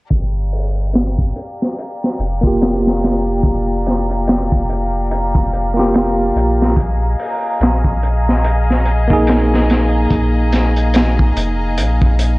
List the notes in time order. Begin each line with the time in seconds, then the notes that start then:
0.10 G1 G4 D5 F5 A#5, kick, closed hi-hat
0.53 open hi-hat
0.93 snare, closed hi-hat
1.18 kick
1.36 closed hi-hat
1.62 snare
1.78 closed hi-hat
2.04 snare
2.19 F1, closed hi-hat
2.41 A#3 F4, kick
2.47 G4
2.61 snare, closed hi-hat
2.87 snare
3.03 snare, closed hi-hat
3.43 kick, closed hi-hat
3.86 snare, closed hi-hat
4.10 closed hi-hat
4.27 snare, closed hi-hat
4.52 kick
4.69 closed hi-hat
5.11 closed hi-hat
5.35 kick
5.53 closed hi-hat
5.74 A#3 F4
5.79 G4, snare
5.94 snare, closed hi-hat
6.35 A#1, closed hi-hat
6.62 snare
6.77 G#4 D#5, kick, closed hi-hat
7.19 open hi-hat
7.60 A#1, snare, closed hi-hat
7.84 kick
8.03 closed hi-hat
8.29 snare
8.44 closed hi-hat
8.70 snare
8.85 closed hi-hat
9.08 A#3 D#4, kick
9.13 G#4
9.27 snare, closed hi-hat
9.54 snare
9.70 snare, closed hi-hat
10.10 A#1, kick, closed hi-hat
10.52 snare, closed hi-hat
10.76 closed hi-hat
10.94 snare, closed hi-hat
11.19 kick
11.36 F1, closed hi-hat
11.78 A#1, closed hi-hat
12.02 kick
12.19 closed hi-hat